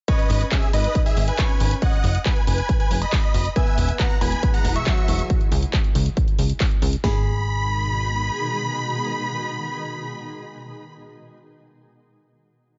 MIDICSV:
0, 0, Header, 1, 7, 480
1, 0, Start_track
1, 0, Key_signature, 5, "minor"
1, 0, Tempo, 434783
1, 91, Time_signature, 4, 2, 24, 8
1, 14112, End_track
2, 0, Start_track
2, 0, Title_t, "Grand piano"
2, 0, Program_c, 0, 0
2, 90, Note_on_c, 0, 75, 99
2, 467, Note_off_c, 0, 75, 0
2, 570, Note_on_c, 0, 76, 85
2, 759, Note_off_c, 0, 76, 0
2, 811, Note_on_c, 0, 75, 96
2, 1094, Note_off_c, 0, 75, 0
2, 1170, Note_on_c, 0, 76, 90
2, 1359, Note_off_c, 0, 76, 0
2, 1410, Note_on_c, 0, 80, 96
2, 1914, Note_off_c, 0, 80, 0
2, 2009, Note_on_c, 0, 78, 102
2, 2387, Note_off_c, 0, 78, 0
2, 2490, Note_on_c, 0, 80, 85
2, 2679, Note_off_c, 0, 80, 0
2, 2730, Note_on_c, 0, 80, 96
2, 3013, Note_off_c, 0, 80, 0
2, 3089, Note_on_c, 0, 80, 93
2, 3278, Note_off_c, 0, 80, 0
2, 3329, Note_on_c, 0, 83, 100
2, 3834, Note_off_c, 0, 83, 0
2, 3930, Note_on_c, 0, 80, 101
2, 4307, Note_off_c, 0, 80, 0
2, 4409, Note_on_c, 0, 82, 93
2, 4598, Note_off_c, 0, 82, 0
2, 4650, Note_on_c, 0, 83, 98
2, 4933, Note_off_c, 0, 83, 0
2, 5010, Note_on_c, 0, 82, 92
2, 5199, Note_off_c, 0, 82, 0
2, 5250, Note_on_c, 0, 85, 99
2, 5754, Note_off_c, 0, 85, 0
2, 7770, Note_on_c, 0, 83, 94
2, 12078, Note_off_c, 0, 83, 0
2, 14112, End_track
3, 0, Start_track
3, 0, Title_t, "Supersaw synth"
3, 0, Program_c, 1, 81
3, 90, Note_on_c, 1, 71, 80
3, 90, Note_on_c, 1, 75, 101
3, 467, Note_off_c, 1, 71, 0
3, 467, Note_off_c, 1, 75, 0
3, 569, Note_on_c, 1, 68, 79
3, 569, Note_on_c, 1, 76, 94
3, 758, Note_off_c, 1, 68, 0
3, 758, Note_off_c, 1, 76, 0
3, 809, Note_on_c, 1, 71, 77
3, 809, Note_on_c, 1, 75, 93
3, 1093, Note_off_c, 1, 71, 0
3, 1093, Note_off_c, 1, 75, 0
3, 1169, Note_on_c, 1, 68, 76
3, 1169, Note_on_c, 1, 76, 88
3, 1358, Note_off_c, 1, 68, 0
3, 1358, Note_off_c, 1, 76, 0
3, 1409, Note_on_c, 1, 71, 81
3, 1409, Note_on_c, 1, 80, 102
3, 1913, Note_off_c, 1, 71, 0
3, 1913, Note_off_c, 1, 80, 0
3, 2010, Note_on_c, 1, 75, 80
3, 2010, Note_on_c, 1, 78, 102
3, 2387, Note_off_c, 1, 75, 0
3, 2387, Note_off_c, 1, 78, 0
3, 2489, Note_on_c, 1, 71, 79
3, 2489, Note_on_c, 1, 80, 96
3, 2678, Note_off_c, 1, 71, 0
3, 2678, Note_off_c, 1, 80, 0
3, 2729, Note_on_c, 1, 80, 97
3, 2730, Note_on_c, 1, 71, 76
3, 3013, Note_off_c, 1, 71, 0
3, 3013, Note_off_c, 1, 80, 0
3, 3088, Note_on_c, 1, 71, 77
3, 3089, Note_on_c, 1, 80, 90
3, 3278, Note_off_c, 1, 71, 0
3, 3278, Note_off_c, 1, 80, 0
3, 3329, Note_on_c, 1, 75, 84
3, 3329, Note_on_c, 1, 83, 103
3, 3834, Note_off_c, 1, 75, 0
3, 3834, Note_off_c, 1, 83, 0
3, 3929, Note_on_c, 1, 76, 80
3, 3929, Note_on_c, 1, 80, 104
3, 4307, Note_off_c, 1, 76, 0
3, 4307, Note_off_c, 1, 80, 0
3, 4409, Note_on_c, 1, 78, 80
3, 4410, Note_on_c, 1, 82, 89
3, 4598, Note_off_c, 1, 78, 0
3, 4599, Note_off_c, 1, 82, 0
3, 4650, Note_on_c, 1, 80, 80
3, 4650, Note_on_c, 1, 83, 98
3, 4933, Note_off_c, 1, 80, 0
3, 4933, Note_off_c, 1, 83, 0
3, 5010, Note_on_c, 1, 78, 78
3, 5010, Note_on_c, 1, 82, 89
3, 5199, Note_off_c, 1, 78, 0
3, 5199, Note_off_c, 1, 82, 0
3, 5250, Note_on_c, 1, 76, 84
3, 5250, Note_on_c, 1, 85, 102
3, 5754, Note_off_c, 1, 76, 0
3, 5754, Note_off_c, 1, 85, 0
3, 7770, Note_on_c, 1, 83, 112
3, 12078, Note_off_c, 1, 83, 0
3, 14112, End_track
4, 0, Start_track
4, 0, Title_t, "Grand piano"
4, 0, Program_c, 2, 0
4, 89, Note_on_c, 2, 61, 77
4, 90, Note_on_c, 2, 73, 99
4, 714, Note_off_c, 2, 61, 0
4, 714, Note_off_c, 2, 73, 0
4, 809, Note_on_c, 2, 75, 93
4, 810, Note_on_c, 2, 63, 74
4, 1434, Note_off_c, 2, 63, 0
4, 1434, Note_off_c, 2, 75, 0
4, 1530, Note_on_c, 2, 61, 82
4, 1530, Note_on_c, 2, 73, 99
4, 2154, Note_off_c, 2, 61, 0
4, 2154, Note_off_c, 2, 73, 0
4, 3929, Note_on_c, 2, 59, 80
4, 3929, Note_on_c, 2, 71, 103
4, 4554, Note_off_c, 2, 59, 0
4, 4554, Note_off_c, 2, 71, 0
4, 4650, Note_on_c, 2, 59, 80
4, 4650, Note_on_c, 2, 71, 99
4, 5274, Note_off_c, 2, 59, 0
4, 5274, Note_off_c, 2, 71, 0
4, 5370, Note_on_c, 2, 54, 83
4, 5370, Note_on_c, 2, 66, 101
4, 5850, Note_off_c, 2, 54, 0
4, 5850, Note_off_c, 2, 66, 0
4, 7770, Note_on_c, 2, 68, 92
4, 12078, Note_off_c, 2, 68, 0
4, 14112, End_track
5, 0, Start_track
5, 0, Title_t, "Ambient pad"
5, 0, Program_c, 3, 92
5, 3930, Note_on_c, 3, 47, 92
5, 3930, Note_on_c, 3, 52, 80
5, 3930, Note_on_c, 3, 56, 81
5, 3930, Note_on_c, 3, 64, 86
5, 3930, Note_on_c, 3, 68, 98
5, 5831, Note_off_c, 3, 47, 0
5, 5831, Note_off_c, 3, 52, 0
5, 5831, Note_off_c, 3, 56, 0
5, 5831, Note_off_c, 3, 64, 0
5, 5831, Note_off_c, 3, 68, 0
5, 7770, Note_on_c, 3, 47, 89
5, 7770, Note_on_c, 3, 51, 85
5, 7770, Note_on_c, 3, 56, 82
5, 7770, Note_on_c, 3, 63, 82
5, 7770, Note_on_c, 3, 68, 99
5, 12078, Note_off_c, 3, 47, 0
5, 12078, Note_off_c, 3, 51, 0
5, 12078, Note_off_c, 3, 56, 0
5, 12078, Note_off_c, 3, 63, 0
5, 12078, Note_off_c, 3, 68, 0
5, 14112, End_track
6, 0, Start_track
6, 0, Title_t, "Analog synth bass"
6, 0, Program_c, 4, 38
6, 330, Note_on_c, 4, 32, 104
6, 486, Note_off_c, 4, 32, 0
6, 810, Note_on_c, 4, 32, 98
6, 966, Note_off_c, 4, 32, 0
6, 1290, Note_on_c, 4, 32, 83
6, 1446, Note_off_c, 4, 32, 0
6, 1770, Note_on_c, 4, 32, 100
6, 1926, Note_off_c, 4, 32, 0
6, 2250, Note_on_c, 4, 30, 103
6, 2406, Note_off_c, 4, 30, 0
6, 2730, Note_on_c, 4, 30, 100
6, 2886, Note_off_c, 4, 30, 0
6, 3210, Note_on_c, 4, 30, 84
6, 3366, Note_off_c, 4, 30, 0
6, 3690, Note_on_c, 4, 30, 103
6, 3846, Note_off_c, 4, 30, 0
6, 4170, Note_on_c, 4, 28, 101
6, 4326, Note_off_c, 4, 28, 0
6, 4650, Note_on_c, 4, 28, 98
6, 4806, Note_off_c, 4, 28, 0
6, 5130, Note_on_c, 4, 28, 86
6, 5286, Note_off_c, 4, 28, 0
6, 5610, Note_on_c, 4, 28, 105
6, 5766, Note_off_c, 4, 28, 0
6, 6090, Note_on_c, 4, 37, 106
6, 6246, Note_off_c, 4, 37, 0
6, 6570, Note_on_c, 4, 37, 100
6, 6726, Note_off_c, 4, 37, 0
6, 7050, Note_on_c, 4, 37, 86
6, 7206, Note_off_c, 4, 37, 0
6, 7530, Note_on_c, 4, 37, 97
6, 7686, Note_off_c, 4, 37, 0
6, 7770, Note_on_c, 4, 32, 103
6, 9166, Note_off_c, 4, 32, 0
6, 14112, End_track
7, 0, Start_track
7, 0, Title_t, "Drums"
7, 90, Note_on_c, 9, 36, 116
7, 90, Note_on_c, 9, 42, 55
7, 200, Note_off_c, 9, 42, 0
7, 201, Note_off_c, 9, 36, 0
7, 210, Note_on_c, 9, 42, 27
7, 320, Note_off_c, 9, 42, 0
7, 330, Note_on_c, 9, 46, 107
7, 440, Note_off_c, 9, 46, 0
7, 450, Note_on_c, 9, 42, 53
7, 560, Note_off_c, 9, 42, 0
7, 570, Note_on_c, 9, 36, 112
7, 570, Note_on_c, 9, 39, 125
7, 570, Note_on_c, 9, 42, 55
7, 681, Note_off_c, 9, 36, 0
7, 681, Note_off_c, 9, 39, 0
7, 681, Note_off_c, 9, 42, 0
7, 690, Note_on_c, 9, 42, 29
7, 801, Note_off_c, 9, 42, 0
7, 810, Note_on_c, 9, 46, 107
7, 920, Note_off_c, 9, 46, 0
7, 930, Note_on_c, 9, 42, 56
7, 1040, Note_off_c, 9, 42, 0
7, 1050, Note_on_c, 9, 36, 120
7, 1050, Note_on_c, 9, 42, 57
7, 1160, Note_off_c, 9, 36, 0
7, 1160, Note_off_c, 9, 42, 0
7, 1170, Note_on_c, 9, 46, 59
7, 1280, Note_off_c, 9, 46, 0
7, 1290, Note_on_c, 9, 46, 104
7, 1400, Note_off_c, 9, 46, 0
7, 1410, Note_on_c, 9, 42, 57
7, 1521, Note_off_c, 9, 42, 0
7, 1530, Note_on_c, 9, 36, 114
7, 1530, Note_on_c, 9, 39, 125
7, 1530, Note_on_c, 9, 42, 54
7, 1640, Note_off_c, 9, 36, 0
7, 1641, Note_off_c, 9, 39, 0
7, 1641, Note_off_c, 9, 42, 0
7, 1650, Note_on_c, 9, 42, 27
7, 1761, Note_off_c, 9, 42, 0
7, 1770, Note_on_c, 9, 46, 105
7, 1880, Note_off_c, 9, 46, 0
7, 1890, Note_on_c, 9, 42, 56
7, 2000, Note_off_c, 9, 42, 0
7, 2010, Note_on_c, 9, 36, 120
7, 2010, Note_on_c, 9, 42, 53
7, 2120, Note_off_c, 9, 36, 0
7, 2120, Note_off_c, 9, 42, 0
7, 2130, Note_on_c, 9, 42, 26
7, 2240, Note_off_c, 9, 42, 0
7, 2250, Note_on_c, 9, 46, 109
7, 2360, Note_off_c, 9, 46, 0
7, 2370, Note_on_c, 9, 42, 54
7, 2480, Note_off_c, 9, 42, 0
7, 2490, Note_on_c, 9, 36, 124
7, 2490, Note_on_c, 9, 39, 122
7, 2490, Note_on_c, 9, 42, 53
7, 2600, Note_off_c, 9, 36, 0
7, 2600, Note_off_c, 9, 39, 0
7, 2600, Note_off_c, 9, 42, 0
7, 2610, Note_on_c, 9, 42, 28
7, 2720, Note_off_c, 9, 42, 0
7, 2730, Note_on_c, 9, 46, 113
7, 2840, Note_off_c, 9, 46, 0
7, 2850, Note_on_c, 9, 42, 52
7, 2960, Note_off_c, 9, 42, 0
7, 2970, Note_on_c, 9, 36, 122
7, 2970, Note_on_c, 9, 42, 55
7, 3080, Note_off_c, 9, 36, 0
7, 3081, Note_off_c, 9, 42, 0
7, 3090, Note_on_c, 9, 42, 27
7, 3200, Note_off_c, 9, 42, 0
7, 3210, Note_on_c, 9, 46, 106
7, 3320, Note_off_c, 9, 46, 0
7, 3330, Note_on_c, 9, 42, 55
7, 3440, Note_off_c, 9, 42, 0
7, 3450, Note_on_c, 9, 36, 125
7, 3450, Note_on_c, 9, 39, 127
7, 3450, Note_on_c, 9, 46, 64
7, 3560, Note_off_c, 9, 36, 0
7, 3561, Note_off_c, 9, 39, 0
7, 3561, Note_off_c, 9, 46, 0
7, 3570, Note_on_c, 9, 42, 26
7, 3680, Note_off_c, 9, 42, 0
7, 3690, Note_on_c, 9, 46, 108
7, 3800, Note_off_c, 9, 46, 0
7, 3810, Note_on_c, 9, 42, 54
7, 3920, Note_off_c, 9, 42, 0
7, 3930, Note_on_c, 9, 36, 124
7, 3930, Note_on_c, 9, 42, 53
7, 4041, Note_off_c, 9, 36, 0
7, 4041, Note_off_c, 9, 42, 0
7, 4050, Note_on_c, 9, 42, 25
7, 4161, Note_off_c, 9, 42, 0
7, 4170, Note_on_c, 9, 46, 108
7, 4281, Note_off_c, 9, 46, 0
7, 4290, Note_on_c, 9, 42, 52
7, 4401, Note_off_c, 9, 42, 0
7, 4410, Note_on_c, 9, 36, 119
7, 4410, Note_on_c, 9, 39, 126
7, 4410, Note_on_c, 9, 42, 52
7, 4521, Note_off_c, 9, 36, 0
7, 4521, Note_off_c, 9, 39, 0
7, 4521, Note_off_c, 9, 42, 0
7, 4530, Note_on_c, 9, 42, 26
7, 4641, Note_off_c, 9, 42, 0
7, 4650, Note_on_c, 9, 46, 112
7, 4761, Note_off_c, 9, 46, 0
7, 4771, Note_on_c, 9, 42, 52
7, 4881, Note_off_c, 9, 42, 0
7, 4890, Note_on_c, 9, 36, 127
7, 4890, Note_on_c, 9, 42, 55
7, 5001, Note_off_c, 9, 36, 0
7, 5001, Note_off_c, 9, 42, 0
7, 5010, Note_on_c, 9, 46, 64
7, 5120, Note_off_c, 9, 46, 0
7, 5130, Note_on_c, 9, 46, 113
7, 5240, Note_off_c, 9, 46, 0
7, 5250, Note_on_c, 9, 42, 52
7, 5361, Note_off_c, 9, 42, 0
7, 5370, Note_on_c, 9, 39, 127
7, 5370, Note_on_c, 9, 42, 53
7, 5371, Note_on_c, 9, 36, 127
7, 5481, Note_off_c, 9, 36, 0
7, 5481, Note_off_c, 9, 39, 0
7, 5481, Note_off_c, 9, 42, 0
7, 5490, Note_on_c, 9, 42, 24
7, 5601, Note_off_c, 9, 42, 0
7, 5610, Note_on_c, 9, 46, 112
7, 5721, Note_off_c, 9, 46, 0
7, 5731, Note_on_c, 9, 42, 53
7, 5841, Note_off_c, 9, 42, 0
7, 5851, Note_on_c, 9, 36, 119
7, 5851, Note_on_c, 9, 42, 51
7, 5961, Note_off_c, 9, 36, 0
7, 5961, Note_off_c, 9, 42, 0
7, 5971, Note_on_c, 9, 42, 24
7, 6081, Note_off_c, 9, 42, 0
7, 6091, Note_on_c, 9, 46, 112
7, 6201, Note_off_c, 9, 46, 0
7, 6210, Note_on_c, 9, 42, 51
7, 6321, Note_off_c, 9, 42, 0
7, 6330, Note_on_c, 9, 36, 123
7, 6330, Note_on_c, 9, 39, 119
7, 6330, Note_on_c, 9, 42, 52
7, 6441, Note_off_c, 9, 36, 0
7, 6441, Note_off_c, 9, 39, 0
7, 6441, Note_off_c, 9, 42, 0
7, 6451, Note_on_c, 9, 42, 26
7, 6561, Note_off_c, 9, 42, 0
7, 6570, Note_on_c, 9, 46, 118
7, 6681, Note_off_c, 9, 46, 0
7, 6690, Note_on_c, 9, 42, 49
7, 6801, Note_off_c, 9, 42, 0
7, 6810, Note_on_c, 9, 36, 127
7, 6810, Note_on_c, 9, 42, 52
7, 6921, Note_off_c, 9, 36, 0
7, 6921, Note_off_c, 9, 42, 0
7, 6930, Note_on_c, 9, 42, 25
7, 7041, Note_off_c, 9, 42, 0
7, 7050, Note_on_c, 9, 46, 109
7, 7161, Note_off_c, 9, 46, 0
7, 7170, Note_on_c, 9, 42, 52
7, 7281, Note_off_c, 9, 42, 0
7, 7290, Note_on_c, 9, 36, 123
7, 7290, Note_on_c, 9, 39, 120
7, 7290, Note_on_c, 9, 46, 65
7, 7401, Note_off_c, 9, 36, 0
7, 7401, Note_off_c, 9, 39, 0
7, 7401, Note_off_c, 9, 46, 0
7, 7410, Note_on_c, 9, 42, 25
7, 7521, Note_off_c, 9, 42, 0
7, 7530, Note_on_c, 9, 46, 115
7, 7641, Note_off_c, 9, 46, 0
7, 7650, Note_on_c, 9, 42, 52
7, 7761, Note_off_c, 9, 42, 0
7, 7770, Note_on_c, 9, 36, 104
7, 7770, Note_on_c, 9, 38, 106
7, 7770, Note_on_c, 9, 46, 88
7, 7880, Note_off_c, 9, 38, 0
7, 7880, Note_off_c, 9, 46, 0
7, 7881, Note_off_c, 9, 36, 0
7, 14112, End_track
0, 0, End_of_file